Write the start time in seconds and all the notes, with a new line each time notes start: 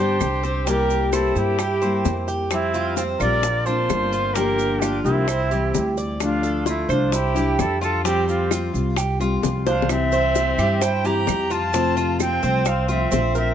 Already playing: G2 G3 B3 D4 G4 C5
0.00 D3
0.19 C2 D3 G3 G4, high bongo, low bongo, claves, maracas
0.43 C4, high bongo, maracas
0.66 C3 G3 A#3 E4 G4 A#4, high bongo, maracas
0.90 high bongo, maracas
1.13 C4 E4 A4, high bongo, claves, maracas
1.35 G2 G3 A#3 E4 G4, maracas
1.59 G4, muted nylon-string guitar stroke, high bongo, claves, maracas
1.81 G3 A#3 C4 E4 G4, high bongo, maracas
2.04 F2 G3 A#3 E4 G4, high bongo, low bongo, maracas
2.28 G4, high bongo, maracas
2.50 F3 G3 C4 E4, high bongo, claves, maracas
2.74 F4, high bongo, maracas
2.96 C4 F4, high bongo, maracas
3.19 A#1 G3 C4 F4 A#4 D5, claves, maracas
3.43 muted nylon-string guitar stroke, high bongo, maracas
3.65 A#3 C4 D4 F4 C5, high bongo, maracas
3.89 G1 D3 A#3 C4 F4, high bongo, low bongo, claves, maracas
4.13 F4, high bongo, maracas
4.33 D3 F3 A#3 D4 G4 A#4, high bongo, maracas
4.38 G4
4.58 high bongo, maracas
4.79 D4 F4 G4, high bongo, claves, maracas
5.03 C2 A#3 C4 D4 E4 G4, maracas
5.07 F3
5.28 C5, muted nylon-string guitar stroke, high bongo, claves, maracas
5.50 E3 G3 C4 E4 G4, high bongo, maracas
5.73 D2 E3 G3 C4 E4, high bongo, low bongo, maracas
5.97 D5, high bongo, maracas
6.20 D3 F3 A3 D4 F4, high bongo, claves, maracas
6.43 A4, high bongo, maracas
6.66 A3 E4 F4, high bongo, maracas
6.89 C2 F3 A3 D4 E4 F4 C5, claves, maracas
7.12 E4 G4, muted nylon-string guitar stroke, high bongo, maracas
7.34 E3 G3 D4 E4 G4, high bongo, maracas
7.59 F2 G3 D4 E4 A4, high bongo, low bongo, claves, maracas
7.81 F4 A4, high bongo, maracas
8.04 F3 G3 C4 F4 G4, high bongo, maracas
8.28 C4 F4, high bongo, maracas
8.51 F4, high bongo, claves, maracas
8.73 C2 G3 C4 F4, maracas
8.96 G4, high bongo, claves, maracas
9.20 G3 C4 F4, high bongo, maracas
9.43 C2 F3 G3 C4 F4, high bongo, low bongo, maracas
9.66 D4 C5 F5, high bongo, maracas
9.82 low bongo
9.89 C3 E3 G3 C4 E4 E5, high bongo, claves, maracas
10.12 C5, high bongo, maracas
10.35 high bongo, maracas
10.58 G2 E3 G3 C4 E4 G4, claves, maracas
10.81 E4 C5 G5, muted nylon-string guitar stroke, high bongo, maracas
11.04 E3 G3 C4 E4 G4 A#5, high bongo, maracas
11.27 F2 E3 G3 C4 E4, high bongo, low bongo, claves, maracas
11.50 F4 A5, high bongo, maracas
11.73 C3 F3 A3 C4 F4, high bongo, maracas
11.97 F4, high bongo, maracas
12.20 C4 G5, high bongo, claves, maracas
12.42 C2 F3 A3 C4 F4, maracas
12.65 C4 F5, muted nylon-string guitar stroke, high bongo, claves, maracas
12.88 F3 A3 C4 F4 E5, high bongo, maracas
13.12 A#1 F3 A3 C4 F4, high bongo, low bongo, maracas
13.35 C4 A#4 E5, high bongo, maracas